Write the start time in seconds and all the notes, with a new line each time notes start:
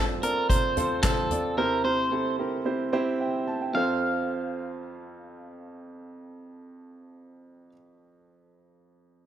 Already playing: C4 F4 A4 C5 D5
0.22 C4 F4 A4 A#4 D5, closed hi-hat
0.49 C4 F4 A4 C5, kick, closed hi-hat
0.76 C4 F4 A4 C5, closed hi-hat, floor tom
1.03 C4 F4 A4 C5, kick, snare, clap, closed hi-hat
1.30 C4 F4 A4 D5, closed hi-hat, floor tom
1.57 C3 C4 E4 G4 A#4 C5
1.83 C4 E4 G4 C5
2.10 C4 E4 G4 A4
2.38 C4 E4 G4 A#4
2.65 C4 E4 G4 C5
2.93 C4 E4 G4 C5
3.21 E5 G5
3.48 A5
3.62 E5 G5
3.73 F2 C4 F4 A4 F5
3.77 C5